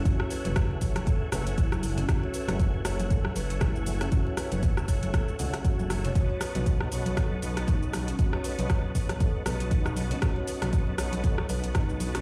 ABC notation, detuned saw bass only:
X:1
M:4/4
L:1/16
Q:"Swing 16ths" 1/4=118
K:F#dor
V:1 name="Detuned saw bass" clef=bass
F,,, z2 F,,,2 z F,,,2 z2 F,,,2 z F,,,2 z | F,,, z2 F,,,2 z F,,,2 z2 F,,,2 z F,,,2 z | F,,, z2 F,,,2 z F,,,2 z2 C,, z2 F,,,2 z | B,,, z2 B,,,2 z B,,,2 z2 B,,,2 z B,,,2 z |
B,,, z2 B,,,2 z B,,,2 z2 B,,,2 z B,,,2 z | B,,, z2 B,,,2 z B,,,2 z2 B,,,2 z B,,,2 z |]